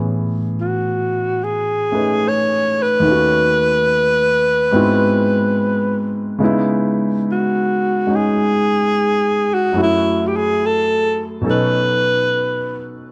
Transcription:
Already playing: grand piano A2 E3 B3 C#4 G#4
0.61 alto saxophone F#4
1.44 alto saxophone G#4
1.92 grand piano A3 C#4 D#4 B4
2.28 alto saxophone C#5
2.82 alto saxophone B4
3.00 grand piano D#2 D#3
3.05 grand piano A3 C#4
3.11 grand piano F#4
4.71 grand piano G#2 G#3 B3 C4
4.75 grand piano E4 F#4
6.39 grand piano C#3 G#3 B3 D#4
6.44 grand piano E4
7.32 alto saxophone F#4
8.07 grand piano G#3 C#4 D#4
8.16 alto saxophone G#4
9.54 alto saxophone F#4
9.73 grand piano F#2 F#3 A3
9.77 grand piano E4 F#4
9.82 alto saxophone E4
10.27 alto saxophone G4
10.36 alto saxophone G#4
10.66 alto saxophone A4
11.41 grand piano B2 F#3 C#4 D#4
11.46 grand piano A4, alto saxophone B4

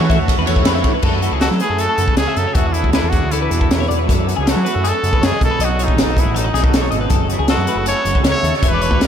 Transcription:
Already playing: clean electric guitar E3 C#4, overdriven electric guitar A3 E4 A4 C#5, trumpet F#4
0.01 picked electric bass E3
0.08 clean electric guitar A3 E5, kick, ride
0.19 picked electric bass E2, clean electric guitar C#5
0.28 clean electric guitar C#4 A4, kick, ride
0.38 picked electric bass E2, clean electric guitar B4
0.46 picked electric bass E2, clean electric guitar E3 C#5, overdriven electric guitar A3 E4 A4 C#5, ride
0.56 kick
0.65 picked electric bass F2, clean electric guitar D3 B4, overdriven electric guitar A3 E4 A4 C#5, snare, ride
0.75 clean electric guitar E5
0.84 clean electric guitar E3 C#5, kick, ride
0.94 clean electric guitar B4
1.02 picked electric bass F#2, clean electric guitar F#3 A3 E4 F#4 A4, kick, crash
1.22 clean electric guitar E4 F#4, closed hi-hat
1.31 picked electric bass C#2, clean electric guitar G#4
1.41 clean electric guitar E4 A4, trumpet F#4, snare, closed hi-hat
1.51 picked electric bass F#3, snare
1.60 clean electric guitar A3 E4 B4, trumpet G#4, closed hi-hat
1.70 picked electric bass F#2, clean electric guitar A4
1.78 clean electric guitar F#4 G#4, trumpet A4, closed hi-hat
1.89 clean electric guitar A4
1.98 picked electric bass F#2, clean electric guitar C#3, closed hi-hat
2.08 clean electric guitar B4, kick
2.17 picked electric bass C#2, clean electric guitar G#3 C#5, trumpet G#4, snare, closed hi-hat
2.27 clean electric guitar E5
2.36 picked electric bass F#2, clean electric guitar F#3, trumpet A4, closed hi-hat
2.47 clean electric guitar C#5
2.55 picked electric bass E2, clean electric guitar E3 E5, trumpet F#4, kick, closed hi-hat
2.67 clean electric guitar D5
2.73 clean electric guitar D4 C#5, trumpet E4, closed hi-hat
2.84 picked electric bass D2, kick
2.93 clean electric guitar D4 B4, trumpet E4, snare, closed hi-hat
3.03 picked electric bass E2, clean electric guitar A4
3.09 clean electric guitar A3 D4, trumpet F#4, kick, closed hi-hat
3.15 clean electric guitar G#4
3.23 picked electric bass D2
3.31 clean electric guitar D4 A4, trumpet E4, closed hi-hat
3.42 clean electric guitar B4
3.51 picked electric bass E2, clean electric guitar B2 G#4, closed hi-hat
3.60 clean electric guitar A4, kick
3.71 picked electric bass E2, clean electric guitar D3, snare, closed hi-hat
3.80 clean electric guitar C#5, snare
3.88 picked electric bass E2, clean electric guitar E3 D5, closed hi-hat
3.99 clean electric guitar B4
4.06 picked electric bass F#2, clean electric guitar F#3 A4, kick, closed hi-hat
4.27 clean electric guitar E4 F#4, closed hi-hat
4.37 picked electric bass C#2, clean electric guitar G#4
4.41 trumpet G#4
4.46 clean electric guitar E4 A4, trumpet F#4, snare, closed hi-hat
4.57 picked electric bass F#3
4.64 clean electric guitar A3 E4 B4, closed hi-hat
4.75 picked electric bass F#2, clean electric guitar A4
4.84 clean electric guitar F#4 G#4, trumpet A4, closed hi-hat
4.95 clean electric guitar A4
5.03 picked electric bass F#2, clean electric guitar C#3, closed hi-hat
5.13 clean electric guitar B4, kick
5.22 picked electric bass F#2, clean electric guitar F#4 C#5, trumpet G#4, snare, closed hi-hat
5.32 clean electric guitar D#5
5.41 picked electric bass B1, clean electric guitar B2, trumpet A4, kick, closed hi-hat
5.51 clean electric guitar B4
5.59 picked electric bass B1, clean electric guitar D#4 D#5, closed hi-hat
5.65 trumpet F#4
5.70 clean electric guitar D#5
5.79 clean electric guitar F#4 C#5, closed hi-hat
5.84 trumpet D#4
5.88 picked electric bass A1, kick
5.97 clean electric guitar B3 D#4 B4, snare, closed hi-hat
6.02 trumpet D#4
6.06 picked electric bass B1, clean electric guitar A4
6.17 clean electric guitar D#4 G#4, trumpet E4, kick, closed hi-hat
6.25 picked electric bass A1
6.35 clean electric guitar F#3 A4, trumpet D#4, closed hi-hat
6.44 clean electric guitar B4
6.53 picked electric bass B1, clean electric guitar E4 G#4, snare, closed hi-hat
6.63 clean electric guitar F#4 A4, kick
6.72 picked electric bass B1, clean electric guitar A4, snare, closed hi-hat
6.82 clean electric guitar C#5
6.91 picked electric bass G#1, clean electric guitar B2 D#5, closed hi-hat
7.01 clean electric guitar B4
7.09 picked electric bass F#1, clean electric guitar F#3 A4, kick, closed hi-hat
7.29 clean electric guitar E4 F#4, closed hi-hat
7.39 picked electric bass C#2, clean electric guitar G#4
7.48 clean electric guitar E4 A4, trumpet F#4, snare, closed hi-hat
7.57 picked electric bass F#2
7.67 clean electric guitar A3 E4 B4, closed hi-hat
7.75 picked electric bass F#1, clean electric guitar A4
7.86 clean electric guitar G#4 A4, trumpet C#5, closed hi-hat
7.96 clean electric guitar A4
8.05 picked electric bass F#1, clean electric guitar C#3, closed hi-hat
8.15 clean electric guitar B4, kick
8.24 picked electric bass C#2, clean electric guitar F#4 C#5, snare, closed hi-hat
8.31 trumpet C#5, clean electric guitar E5
8.43 picked electric bass D#2, clean electric guitar A4, closed hi-hat
8.54 clean electric guitar C#5, trumpet C#5, snare
8.63 picked electric bass E1, clean electric guitar E3 E5, kick, closed hi-hat
8.68 trumpet B4
8.74 clean electric guitar D5
8.82 clean electric guitar D4 C#5, closed hi-hat
8.91 picked electric bass D2, kick
9.01 clean electric guitar E4 B4, snare, closed hi-hat

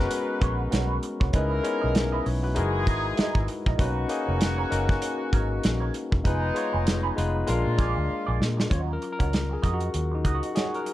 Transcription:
Already playing: tine electric piano G#3 B3 C#4 F#4 A#4, horn section D#4 F#4 B4
0.10 muted clean electric guitar stroke, closed hi-hat
0.41 fingered electric bass A#1, clean electric guitar F#4 B4 C#5, kick, closed hi-hat
0.59 muted clean electric guitar stroke
0.71 fingered electric bass B1, clean electric guitar F#4 B4 C#5, snare, closed hi-hat
1.02 muted clean electric guitar stroke, closed hi-hat
1.20 fingered electric bass C2, clean electric guitar F#4 B4 C#5, kick
1.33 fingered electric bass C#2, tine electric piano G#3 C#4 D#4 E4 B4, horn section A#3 E4 A#4, clean electric guitar E4 B4 D#5, kick, closed hi-hat
1.51 muted clean electric guitar stroke
1.63 tine electric piano G#3 B3 C#4 D#4 E4, muted clean electric guitar stroke, closed hi-hat
1.81 fingered electric bass B1, clean electric guitar E4 B4 D#5
1.95 muted clean electric guitar stroke, snare, closed hi-hat
2.12 clean electric guitar E4 B4 D#5, tine electric piano B4 E5
2.25 fingered electric bass B1, tine electric piano G#4 C#5, muted clean electric guitar stroke, open hi-hat
2.43 tine electric piano F#4 B4, muted clean electric guitar stroke
2.55 fingered electric bass F#1, tine electric piano G#3 D#4 E4 F#4 A#4, horn section G#3 E4 G#4, muted clean electric guitar stroke, closed hi-hat
2.87 fingered electric bass G#1, clean electric guitar E4 A#4 D#5, kick, closed hi-hat
3.05 muted clean electric guitar stroke
3.17 clean electric guitar E4 A#4 D#5, muted fingered electric bass stroke, snare, closed hi-hat
3.35 fingered electric bass G#1, kick
3.48 muted clean electric guitar stroke, closed hi-hat
3.66 fingered electric bass A#1, clean electric guitar E4 A#4 D#5, kick
3.78 fingered electric bass B1, tine electric piano A#3 C#4 D#4 F#4 B4, horn section C#4 D#4 F#4, clean electric guitar D#4 A#4 C#5, kick, closed hi-hat
3.96 muted clean electric guitar stroke
4.08 tine electric piano A#3 C#4 D#4 F#4 G#4, muted clean electric guitar stroke, closed hi-hat
4.27 fingered electric bass F1, clean electric guitar D#4 A#4 C#5
4.40 muted clean electric guitar stroke, snare, closed hi-hat
4.58 clean electric guitar D#4 A#4 C#5
4.70 fingered electric bass F#1, tine electric piano A#3 C#4 D#4 F#4 A#4, muted clean electric guitar stroke, closed hi-hat
4.89 muted clean electric guitar stroke, kick, snare
5.02 muted clean electric guitar stroke, closed hi-hat
5.32 fingered electric bass G#1, clean electric guitar D#4 A#4 C#5, kick, closed hi-hat
5.50 muted clean electric guitar stroke
5.63 fingered electric bass A#1, muted clean electric guitar stroke, snare, closed hi-hat
5.80 clean electric guitar D#4 A#4 C#5
5.94 muted clean electric guitar stroke, closed hi-hat
6.12 fingered electric bass E1, muted clean electric guitar stroke, kick
6.24 fingered electric bass F1, tine electric piano G#3 B3 D#4 F4 B4, horn section G#3 B3 D#4, clean electric guitar D#4 G#4 B4, kick, closed hi-hat
6.42 muted clean electric guitar stroke
6.54 tine electric piano G#3 B3 D#4 F4 C#5, closed hi-hat
6.73 fingered electric bass F1, clean electric guitar D#4 G#4 B4
6.86 muted clean electric guitar stroke, snare, closed hi-hat
7.03 clean electric guitar D#4 G#4 B4
7.16 fingered electric bass F1, tine electric piano G#3 B3 D#4 F4 B4, muted clean electric guitar stroke, closed hi-hat
7.34 muted clean electric guitar stroke
7.47 fingered electric bass A#1, tine electric piano G#3 A#3 D4 F4 A#4, horn section A#3 D4 F4, muted clean electric guitar stroke, closed hi-hat
7.66 fingered electric bass A#2
7.78 fingered electric bass A#1, clean electric guitar F4 G#4 D5, kick, closed hi-hat
7.96 fingered electric bass D2, muted clean electric guitar stroke
8.09 muted clean electric guitar stroke, muted fingered electric bass stroke
8.27 fingered electric bass A#1, clean electric guitar F4 G#4 D5
8.39 fingered electric bass A#2, muted clean electric guitar stroke, snare
8.57 muted clean electric guitar stroke, snare
8.70 fingered electric bass D#2, tine electric piano F#3 C#4 F4 C#5, clean electric guitar D#4 F#4 C#5, kick, closed hi-hat
8.88 muted clean electric guitar stroke
8.93 tine electric piano A#4
9.02 muted clean electric guitar stroke, closed hi-hat
9.13 tine electric piano A#4
9.19 fingered electric bass C#2, clean electric guitar D#4 F#4 C#5, kick, closed hi-hat
9.32 muted clean electric guitar stroke, snare, closed hi-hat
9.49 tine electric piano G#4, muted clean electric guitar stroke
9.62 fingered electric bass F2, clean electric guitar D#4 F#4 D#5, kick, closed hi-hat
9.74 tine electric piano F#4
9.80 muted clean electric guitar stroke, closed hi-hat
9.94 fingered electric bass D#2, muted clean electric guitar stroke, closed hi-hat
10.12 tine electric piano D#4, muted clean electric guitar stroke
10.24 fingered electric bass C#2, clean electric guitar D#4 F#4 D#5, kick, closed hi-hat
10.35 tine electric piano F#4
10.43 muted clean electric guitar stroke, closed hi-hat
10.55 clean electric guitar D#4 F#4 C#5, tine electric piano G#4, snare, closed hi-hat
10.74 tine electric piano A#4, closed hi-hat
10.86 muted clean electric guitar stroke, closed hi-hat

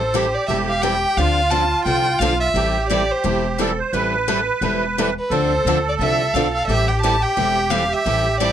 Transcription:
Already playing: upright bass A1, accordion A4, violin C5
0.14 steel-string acoustic guitar E3 G3 C4 E4 A4, accordion G4
0.35 violin D5
0.48 upright bass E1, steel-string acoustic guitar E3 G3 C4 E4 A4, violin E5
0.69 violin F5
0.82 steel-string acoustic guitar E3 G3 C4 E4 A4, violin G5
1.17 upright bass D2, steel-string acoustic guitar D3 F3 C4 D4 A4, accordion F4, violin F5
1.51 steel-string acoustic guitar D3 F3 C4 D4 A4, violin A5
1.85 upright bass C2, steel-string acoustic guitar D3 F3 C4 D4 A4, violin G5
2.19 upright bass B1, steel-string acoustic guitar D3 F3 C4 D4 A4, violin F5
2.40 violin E5
2.54 upright bass A1, steel-string acoustic guitar E3 G3 C4 E4 A4, accordion G4
2.90 steel-string acoustic guitar E3 G3 C4 E4 A4, violin D5
3.11 violin C5
3.24 upright bass E1, steel-string acoustic guitar E3 G3 C4 E4 A4
3.58 steel-string acoustic guitar E3 G3 C4 E4 A4, accordion A4
3.78 accordion C5
3.93 upright bass A1, steel-string acoustic guitar E3 G3 C4 E4 A4, accordion B4
4.28 steel-string acoustic guitar E3 G3 C4 E4 A4
4.61 upright bass E1, steel-string acoustic guitar E3 G3 C4 E4 A4
4.98 steel-string acoustic guitar E3 G3 C4 E4 A4
5.19 violin B4
5.30 upright bass D2, steel-string acoustic guitar D3 F3 C4 D4 A4, accordion A4, violin C5
5.65 upright bass D2, steel-string acoustic guitar D3 F3 C4 D4 A4
5.89 violin D5
5.99 upright bass C2, steel-string acoustic guitar D3 F3 C4 D4 A4, violin E5
6.34 upright bass B1, steel-string acoustic guitar D3 F3 C4 D4 A4, violin F5
6.54 violin F5
6.67 upright bass A1, steel-string acoustic guitar E3 G3 C4 E4 A4, accordion G4, violin E5
6.88 violin G5
7.02 steel-string acoustic guitar E3 G3 C4 E4 A4, violin A5
7.22 violin G5
7.37 upright bass E1, steel-string acoustic guitar E3 G3 C4 E4 A4
7.70 steel-string acoustic guitar E3 G3 C4 E4 A4, violin F5
7.93 violin E5
8.06 upright bass A1, steel-string acoustic guitar E3 G3 C4 E4 A4
8.40 steel-string acoustic guitar E3 G3 C4 E4 A4, violin D5

